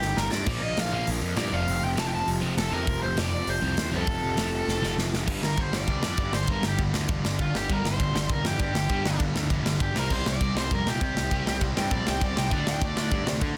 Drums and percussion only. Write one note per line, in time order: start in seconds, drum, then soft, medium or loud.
0.02 snare medium
0.17 snare medium
0.32 snare medium
0.46 kick loud
0.46 crash loud
0.77 snare loud
0.77 open hi-hat medium
1.07 open hi-hat medium
1.37 snare loud
1.37 open hi-hat medium
1.68 open hi-hat medium
1.97 snare loud
1.97 open hi-hat medium
2.28 open hi-hat medium
2.58 snare loud
2.58 open hi-hat medium
2.87 kick loud
2.87 open hi-hat medium
3.17 snare loud
3.17 open hi-hat medium
3.47 open hi-hat medium
3.77 snare loud
3.77 open hi-hat medium
4.07 kick loud
4.07 open hi-hat medium
4.37 snare loud
4.37 open hi-hat medium
4.69 snare medium
4.83 snare medium
4.99 snare medium
5.14 snare medium
5.28 kick loud
5.28 crash loud
5.43 snare loud
5.57 kick loud
5.57 ride medium
5.73 snare loud
5.88 kick loud
5.88 ride medium
6.03 snare loud
6.17 kick loud
6.17 ride medium
6.33 snare loud
6.47 kick loud
6.47 ride medium
6.63 snare loud
6.78 kick loud
6.78 ride medium
6.94 snare loud
7.08 kick loud
7.08 ride medium
7.25 snare loud
7.39 kick loud
7.39 ride medium
7.55 snare loud
7.70 kick loud
7.70 ride medium
7.85 snare loud
8.00 kick loud
8.00 ride medium
8.16 snare loud
8.29 kick loud
8.29 ride medium
8.45 snare loud
8.59 kick loud
8.59 ride medium
8.75 snare loud
8.89 kick loud
8.89 ride medium
9.05 snare loud
9.20 kick loud
9.20 ride medium
9.36 snare loud
9.50 kick loud
9.50 ride medium
9.66 snare loud
9.80 kick loud
9.80 ride medium
9.96 snare loud
10.10 kick loud
10.10 crash medium
10.26 snare loud
10.41 kick loud
10.41 ride medium
10.57 snare loud
10.71 kick loud
10.71 ride medium
10.87 snare loud
11.01 kick loud
11.01 ride medium
11.17 snare loud
11.31 kick loud
11.31 ride medium
11.47 snare loud
11.61 kick loud
11.61 ride medium
11.77 snare loud
11.91 kick loud
11.91 ride medium
12.07 snare loud
12.21 kick loud
12.21 ride medium
12.37 snare loud
12.51 kick loud
12.51 ride medium
12.67 snare loud
12.82 kick loud
12.82 ride medium
12.97 snare loud
13.11 kick loud
13.11 ride medium
13.27 snare loud
13.41 kick loud
13.41 ride medium